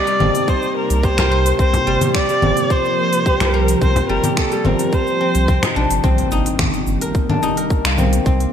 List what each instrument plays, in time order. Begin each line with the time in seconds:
Already playing: ambient pad C3 G3 A#3 D#4 A5, guzheng C4 G4 A#4 C5, kamancheh D5
0.07 guzheng G3, open hi-hat, shaker
0.20 sub bass G1, guzheng C4, low conga
0.35 open hi-hat, shaker
0.48 kamancheh C5, kick, shaker
0.62 shaker
0.77 kamancheh A#4
0.90 sub bass C2, open hi-hat, shaker
1.03 guzheng G4, kamancheh C5, kick, shaker
1.18 guzheng A#4, finger snap, open hi-hat, frame drum, shaker
1.32 guzheng C5
1.46 open hi-hat, shaker
1.59 sub bass C2, ambient pad F3 F4 A#4, guzheng C4, kamancheh C5, kick, shaker
1.73 open hi-hat, frame drum, shaker
1.87 sub bass G1, guzheng G3
2.01 guzheng G4, open hi-hat, low conga, shaker
2.15 kamancheh D5, finger snap, kick, shaker
2.29 guzheng G3, open hi-hat, shaker
2.42 sub bass G1, guzheng C4, low conga
2.57 open hi-hat, shaker
2.70 kamancheh C5, kick, shaker
2.85 shaker
3.13 open hi-hat, shaker
3.26 guzheng G4, kick, shaker
3.40 sub bass C2, guzheng A#4, finger snap, open hi-hat, frame drum, shaker
3.54 kamancheh A#4, guzheng C5
3.68 open hi-hat, shaker
3.82 sub bass C2, guzheng C4, kamancheh C5, ambient pad A5, kick, shaker
3.96 open hi-hat, frame drum, shaker
4.09 sub bass G1, guzheng G3, kamancheh A#4
4.24 guzheng G4, open hi-hat, low conga, shaker
4.37 kamancheh A4, finger snap, kick, shaker
4.52 guzheng G3, open hi-hat, shaker
4.65 sub bass G1, guzheng C4, kamancheh A#4, low conga
4.79 open hi-hat, shaker
4.93 kamancheh C5, kick, shaker
5.07 shaker
5.21 guzheng C4
5.35 sub bass C2, open hi-hat, shaker
5.48 sub bass C2, guzheng C4, kick, shaker
5.63 guzheng D#4, finger snap, open hi-hat, frame drum, shaker
5.76 sub bass A#1, guzheng D4
5.91 sub bass G1, open hi-hat, shaker
6.04 sub bass C2, ambient pad C3 D#3 G3 A#3 G4, guzheng C4, kick, impact, shaker
6.18 open hi-hat
6.31 sub bass G1, guzheng D#4, shaker
6.46 open hi-hat, shaker
6.59 finger snap, kick, low conga, shaker
6.74 open hi-hat, shaker
6.87 sub bass G1, shaker
7.01 guzheng A#4, open hi-hat, shaker
7.15 kick, shaker
7.29 guzheng D4, low conga
7.43 guzheng D#4, shaker
7.57 guzheng A#4, open hi-hat, shaker
7.70 kick, shaker
7.85 sub bass C2, guzheng A#3, finger snap, open hi-hat
7.98 guzheng C4, low conga, shaker
8.13 open hi-hat, shaker
8.26 sub bass C2, guzheng C4, kick, shaker
8.40 open hi-hat